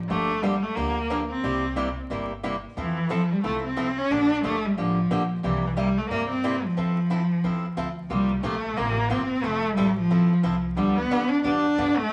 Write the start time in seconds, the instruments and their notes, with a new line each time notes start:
0.09 upright bass G1, steel-string acoustic guitar D3 F3 A#3 D4 G4, cello A3
0.42 steel-string acoustic guitar D3 F3 A#3 D4 G4, cello G3
0.63 cello A3
0.75 upright bass D2, steel-string acoustic guitar D3 F3 A#3 D4 G4, cello A#3
1.10 steel-string acoustic guitar D3 F3 A#3 D4 G4
1.29 cello C4
1.43 upright bass C2, steel-string acoustic guitar C3 G3 A#3 E4 G4
1.76 steel-string acoustic guitar C3 G3 A#3 E4 G4
2.10 upright bass G1, steel-string acoustic guitar C3 G3 A#3 E4 G4
2.43 steel-string acoustic guitar C3 G3 A#3 E4 G4
2.77 upright bass F2, cello E3, steel-string acoustic guitar F3 C4 E4 A4
3.10 steel-string acoustic guitar F3 C4 E4 A4, cello F3
3.32 cello G3
3.44 upright bass C2, steel-string acoustic guitar F3 C4 E4 A4, cello A3
3.65 cello C4
3.77 steel-string acoustic guitar F3 C4 E4 A4
3.98 cello C#4
4.10 upright bass A#1, steel-string acoustic guitar D3 F3 A#3 D4 G4, cello D4
4.43 upright bass G1, steel-string acoustic guitar D3 F3 A#3 D4 G4, cello A3
4.66 cello G3
4.77 upright bass A1, steel-string acoustic guitar D3 F3 A#3 D4 G4, cello F3
5.10 upright bass A#1, steel-string acoustic guitar D3 F3 A#3 D4 G4
5.43 upright bass C2, steel-string acoustic guitar C3 G3 A#3 E4 G4, cello E3
5.64 cello E3
5.77 steel-string acoustic guitar C3 G3 A#3 E4 G4, cello G3
5.98 cello A3
6.10 upright bass G2, steel-string acoustic guitar C3 G3 A#3 E4 G4, cello A#3
6.31 cello C4
6.44 steel-string acoustic guitar C3 G3 A#3 E4 G4
6.64 cello F3
6.77 upright bass F2, steel-string acoustic guitar F3 C4 E4 A4
7.10 steel-string acoustic guitar F3 C4 E4 A4
7.44 upright bass E2, steel-string acoustic guitar F3 C4 E4 A4
7.76 upright bass D2, steel-string acoustic guitar F3 C4 E4 A4
8.10 upright bass C2, steel-string acoustic guitar C3 F3 A#3 F4 G4, cello G3
8.43 upright bass A#1, steel-string acoustic guitar C3 F3 A#3 F4 G4, cello A3
8.76 upright bass A1, steel-string acoustic guitar C3 F3 A#3 F4 G4, cello A#3
9.10 upright bass G1, steel-string acoustic guitar C3 F3 A#3 F4 G4, cello C4
9.43 upright bass F1, steel-string acoustic guitar F3 C4 E4 A4, cello A3
9.76 upright bass A1, steel-string acoustic guitar F3 C4 E4 A4, cello G3
9.96 cello F3
10.10 steel-string acoustic guitar F3 C4 E4 A4
10.31 muted upright bass stroke
10.43 upright bass C2, steel-string acoustic guitar F3 C4 E4 A4
10.76 upright bass D2, steel-string acoustic guitar D3 F3 B3 D4 G4, cello G3
10.97 cello B3
11.11 upright bass E2, steel-string acoustic guitar D3 F3 B3 D4 G4
11.30 cello D4
11.43 upright bass F2, steel-string acoustic guitar D3 F3 B3 D4 G4, cello D4
11.78 upright bass G2, steel-string acoustic guitar D3 F3 B3 D4 G4
11.97 cello A3, muted upright bass stroke